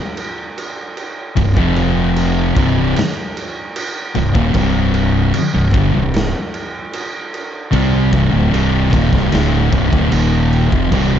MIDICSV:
0, 0, Header, 1, 6, 480
1, 0, Start_track
1, 0, Key_signature, -3, "minor"
1, 0, Tempo, 795756
1, 825, Time_signature, 4, 2, 24, 8
1, 6751, End_track
2, 0, Start_track
2, 0, Title_t, "Distorted electric guitar"
2, 0, Program_c, 0, 30
2, 819, Note_on_c, 0, 36, 55
2, 823, Note_on_c, 0, 43, 77
2, 941, Note_off_c, 0, 36, 0
2, 943, Note_on_c, 0, 41, 86
2, 944, Note_off_c, 0, 43, 0
2, 949, Note_on_c, 0, 53, 110
2, 950, Note_on_c, 0, 48, 97
2, 1537, Note_off_c, 0, 41, 0
2, 1537, Note_off_c, 0, 48, 0
2, 1539, Note_on_c, 0, 36, 86
2, 1540, Note_off_c, 0, 53, 0
2, 1541, Note_on_c, 0, 43, 80
2, 1544, Note_on_c, 0, 48, 97
2, 1775, Note_off_c, 0, 36, 0
2, 1776, Note_off_c, 0, 43, 0
2, 1778, Note_off_c, 0, 48, 0
2, 2502, Note_on_c, 0, 36, 65
2, 2505, Note_on_c, 0, 43, 77
2, 2612, Note_off_c, 0, 36, 0
2, 2615, Note_on_c, 0, 39, 86
2, 2619, Note_off_c, 0, 43, 0
2, 2621, Note_on_c, 0, 46, 86
2, 2732, Note_off_c, 0, 39, 0
2, 2734, Note_on_c, 0, 36, 97
2, 2735, Note_off_c, 0, 46, 0
2, 2737, Note_on_c, 0, 43, 97
2, 2738, Note_on_c, 0, 48, 104
2, 3213, Note_off_c, 0, 36, 0
2, 3215, Note_off_c, 0, 43, 0
2, 3215, Note_off_c, 0, 48, 0
2, 3342, Note_on_c, 0, 43, 67
2, 3343, Note_on_c, 0, 36, 58
2, 3450, Note_off_c, 0, 43, 0
2, 3455, Note_off_c, 0, 36, 0
2, 3457, Note_on_c, 0, 43, 92
2, 3461, Note_on_c, 0, 50, 102
2, 3575, Note_off_c, 0, 43, 0
2, 3576, Note_off_c, 0, 50, 0
2, 3578, Note_on_c, 0, 36, 60
2, 3582, Note_on_c, 0, 43, 66
2, 3774, Note_off_c, 0, 36, 0
2, 3776, Note_off_c, 0, 43, 0
2, 4653, Note_on_c, 0, 48, 86
2, 4658, Note_on_c, 0, 55, 96
2, 4660, Note_on_c, 0, 60, 95
2, 4892, Note_off_c, 0, 48, 0
2, 4894, Note_on_c, 0, 36, 84
2, 4895, Note_off_c, 0, 55, 0
2, 4896, Note_off_c, 0, 60, 0
2, 4901, Note_on_c, 0, 43, 88
2, 5013, Note_off_c, 0, 36, 0
2, 5016, Note_on_c, 0, 38, 78
2, 5017, Note_off_c, 0, 43, 0
2, 5025, Note_on_c, 0, 45, 91
2, 5131, Note_off_c, 0, 38, 0
2, 5133, Note_on_c, 0, 36, 85
2, 5134, Note_off_c, 0, 45, 0
2, 5137, Note_on_c, 0, 43, 102
2, 5142, Note_on_c, 0, 48, 111
2, 5373, Note_off_c, 0, 36, 0
2, 5374, Note_off_c, 0, 43, 0
2, 5376, Note_on_c, 0, 39, 92
2, 5377, Note_off_c, 0, 48, 0
2, 5382, Note_on_c, 0, 46, 96
2, 5494, Note_off_c, 0, 39, 0
2, 5497, Note_off_c, 0, 46, 0
2, 5502, Note_on_c, 0, 36, 85
2, 5506, Note_on_c, 0, 43, 84
2, 5614, Note_off_c, 0, 36, 0
2, 5617, Note_on_c, 0, 38, 88
2, 5618, Note_off_c, 0, 43, 0
2, 5621, Note_on_c, 0, 45, 92
2, 5624, Note_on_c, 0, 50, 100
2, 5850, Note_off_c, 0, 38, 0
2, 5853, Note_on_c, 0, 36, 101
2, 5855, Note_off_c, 0, 45, 0
2, 5858, Note_off_c, 0, 50, 0
2, 5858, Note_on_c, 0, 43, 99
2, 5972, Note_off_c, 0, 36, 0
2, 5975, Note_off_c, 0, 43, 0
2, 5975, Note_on_c, 0, 38, 95
2, 5981, Note_on_c, 0, 45, 103
2, 6094, Note_off_c, 0, 38, 0
2, 6097, Note_off_c, 0, 45, 0
2, 6098, Note_on_c, 0, 39, 84
2, 6101, Note_on_c, 0, 46, 106
2, 6105, Note_on_c, 0, 51, 109
2, 6452, Note_off_c, 0, 39, 0
2, 6454, Note_on_c, 0, 41, 88
2, 6455, Note_off_c, 0, 46, 0
2, 6458, Note_on_c, 0, 48, 106
2, 6459, Note_off_c, 0, 51, 0
2, 6573, Note_off_c, 0, 41, 0
2, 6575, Note_off_c, 0, 48, 0
2, 6576, Note_on_c, 0, 36, 89
2, 6582, Note_on_c, 0, 43, 104
2, 6582, Note_on_c, 0, 48, 99
2, 6751, Note_off_c, 0, 36, 0
2, 6751, Note_off_c, 0, 43, 0
2, 6751, Note_off_c, 0, 48, 0
2, 6751, End_track
3, 0, Start_track
3, 0, Title_t, "Fingered electric bass"
3, 0, Program_c, 1, 33
3, 830, Note_on_c, 1, 24, 75
3, 940, Note_off_c, 1, 24, 0
3, 947, Note_on_c, 1, 29, 87
3, 1522, Note_off_c, 1, 29, 0
3, 1544, Note_on_c, 1, 24, 91
3, 1768, Note_off_c, 1, 24, 0
3, 2513, Note_on_c, 1, 24, 76
3, 2617, Note_off_c, 1, 24, 0
3, 2621, Note_on_c, 1, 27, 99
3, 2735, Note_off_c, 1, 27, 0
3, 2744, Note_on_c, 1, 24, 91
3, 3201, Note_off_c, 1, 24, 0
3, 3350, Note_on_c, 1, 24, 78
3, 3460, Note_off_c, 1, 24, 0
3, 3465, Note_on_c, 1, 31, 91
3, 3577, Note_off_c, 1, 31, 0
3, 3591, Note_on_c, 1, 24, 85
3, 3812, Note_off_c, 1, 24, 0
3, 4663, Note_on_c, 1, 36, 96
3, 4888, Note_off_c, 1, 36, 0
3, 4903, Note_on_c, 1, 24, 88
3, 5016, Note_off_c, 1, 24, 0
3, 5024, Note_on_c, 1, 26, 97
3, 5136, Note_off_c, 1, 26, 0
3, 5140, Note_on_c, 1, 24, 83
3, 5366, Note_off_c, 1, 24, 0
3, 5387, Note_on_c, 1, 27, 90
3, 5498, Note_off_c, 1, 27, 0
3, 5508, Note_on_c, 1, 24, 90
3, 5619, Note_off_c, 1, 24, 0
3, 5628, Note_on_c, 1, 26, 93
3, 5850, Note_off_c, 1, 26, 0
3, 5869, Note_on_c, 1, 24, 106
3, 5979, Note_off_c, 1, 24, 0
3, 5984, Note_on_c, 1, 26, 97
3, 6097, Note_off_c, 1, 26, 0
3, 6102, Note_on_c, 1, 27, 95
3, 6440, Note_off_c, 1, 27, 0
3, 6471, Note_on_c, 1, 29, 96
3, 6581, Note_off_c, 1, 29, 0
3, 6587, Note_on_c, 1, 24, 92
3, 6751, Note_off_c, 1, 24, 0
3, 6751, End_track
4, 0, Start_track
4, 0, Title_t, "Muted distorted electric guitar strokes"
4, 3224, Note_on_c, 9, 29, 59
4, 3284, Note_off_c, 9, 29, 0
4, 6751, End_track
5, 0, Start_track
5, 0, Title_t, "Muted fingered electric bass strokes"
5, 3237, Note_on_c, 9, 29, 38
5, 3297, Note_off_c, 9, 29, 0
5, 6751, End_track
6, 0, Start_track
6, 0, Title_t, "Drums"
6, 103, Note_on_c, 9, 49, 57
6, 163, Note_off_c, 9, 49, 0
6, 348, Note_on_c, 9, 49, 76
6, 408, Note_off_c, 9, 49, 0
6, 585, Note_on_c, 9, 49, 53
6, 645, Note_off_c, 9, 49, 0
6, 824, Note_on_c, 9, 49, 74
6, 827, Note_on_c, 9, 36, 90
6, 884, Note_off_c, 9, 49, 0
6, 887, Note_off_c, 9, 36, 0
6, 945, Note_on_c, 9, 36, 109
6, 1006, Note_off_c, 9, 36, 0
6, 1064, Note_on_c, 9, 49, 63
6, 1124, Note_off_c, 9, 49, 0
6, 1306, Note_on_c, 9, 49, 81
6, 1366, Note_off_c, 9, 49, 0
6, 1547, Note_on_c, 9, 36, 103
6, 1547, Note_on_c, 9, 49, 61
6, 1607, Note_off_c, 9, 49, 0
6, 1608, Note_off_c, 9, 36, 0
6, 1788, Note_on_c, 9, 49, 81
6, 1804, Note_on_c, 9, 38, 106
6, 1848, Note_off_c, 9, 49, 0
6, 1864, Note_off_c, 9, 38, 0
6, 2032, Note_on_c, 9, 49, 63
6, 2093, Note_off_c, 9, 49, 0
6, 2267, Note_on_c, 9, 49, 80
6, 2327, Note_off_c, 9, 49, 0
6, 2503, Note_on_c, 9, 49, 55
6, 2563, Note_off_c, 9, 49, 0
6, 2624, Note_on_c, 9, 36, 97
6, 2685, Note_off_c, 9, 36, 0
6, 2738, Note_on_c, 9, 49, 80
6, 2744, Note_on_c, 9, 36, 108
6, 2798, Note_off_c, 9, 49, 0
6, 2804, Note_off_c, 9, 36, 0
6, 2979, Note_on_c, 9, 49, 60
6, 3039, Note_off_c, 9, 49, 0
6, 3220, Note_on_c, 9, 49, 79
6, 3280, Note_off_c, 9, 49, 0
6, 3462, Note_on_c, 9, 49, 60
6, 3463, Note_on_c, 9, 36, 114
6, 3523, Note_off_c, 9, 36, 0
6, 3523, Note_off_c, 9, 49, 0
6, 3703, Note_on_c, 9, 49, 73
6, 3719, Note_on_c, 9, 38, 111
6, 3763, Note_off_c, 9, 49, 0
6, 3779, Note_off_c, 9, 38, 0
6, 3944, Note_on_c, 9, 49, 52
6, 4005, Note_off_c, 9, 49, 0
6, 4182, Note_on_c, 9, 49, 77
6, 4243, Note_off_c, 9, 49, 0
6, 4427, Note_on_c, 9, 49, 54
6, 4487, Note_off_c, 9, 49, 0
6, 4663, Note_on_c, 9, 36, 97
6, 4664, Note_on_c, 9, 49, 81
6, 4723, Note_off_c, 9, 36, 0
6, 4724, Note_off_c, 9, 49, 0
6, 4904, Note_on_c, 9, 36, 118
6, 4908, Note_on_c, 9, 49, 61
6, 4964, Note_off_c, 9, 36, 0
6, 4968, Note_off_c, 9, 49, 0
6, 5151, Note_on_c, 9, 49, 79
6, 5211, Note_off_c, 9, 49, 0
6, 5386, Note_on_c, 9, 36, 113
6, 5393, Note_on_c, 9, 49, 64
6, 5447, Note_off_c, 9, 36, 0
6, 5453, Note_off_c, 9, 49, 0
6, 5506, Note_on_c, 9, 36, 109
6, 5525, Note_on_c, 9, 38, 34
6, 5566, Note_off_c, 9, 36, 0
6, 5586, Note_off_c, 9, 38, 0
6, 5623, Note_on_c, 9, 49, 83
6, 5639, Note_on_c, 9, 38, 102
6, 5683, Note_off_c, 9, 49, 0
6, 5700, Note_off_c, 9, 38, 0
6, 5866, Note_on_c, 9, 36, 102
6, 5867, Note_on_c, 9, 49, 60
6, 5927, Note_off_c, 9, 36, 0
6, 5927, Note_off_c, 9, 49, 0
6, 5988, Note_on_c, 9, 36, 111
6, 6048, Note_off_c, 9, 36, 0
6, 6103, Note_on_c, 9, 49, 84
6, 6163, Note_off_c, 9, 49, 0
6, 6350, Note_on_c, 9, 49, 57
6, 6410, Note_off_c, 9, 49, 0
6, 6468, Note_on_c, 9, 36, 99
6, 6529, Note_off_c, 9, 36, 0
6, 6587, Note_on_c, 9, 36, 104
6, 6588, Note_on_c, 9, 49, 85
6, 6647, Note_off_c, 9, 36, 0
6, 6648, Note_off_c, 9, 49, 0
6, 6751, End_track
0, 0, End_of_file